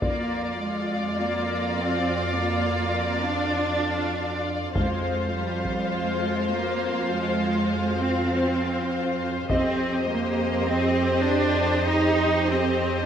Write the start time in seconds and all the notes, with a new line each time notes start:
0.01 F2 A#3 F4 D5 F5, taiko
0.61 G#3
1.19 A#3 F4 D5
1.80 C4
2.38 A#3 F4 D5
3.26 D4
3.57 F4 D5
4.74 F2 G#3 F4 C5 F5, taiko
5.34 G3
5.65 taiko
5.93 G#3 F4 C5
6.53 A#3
7.12 G#3 F4 C5
8.01 C4
8.33 F4 C5
9.49 F2 C4 G4 C5 D#5, taiko
10.09 A#3
10.67 C4 G4 D#5
11.27 D4
11.86 D#4 G4 D#5
12.47 C4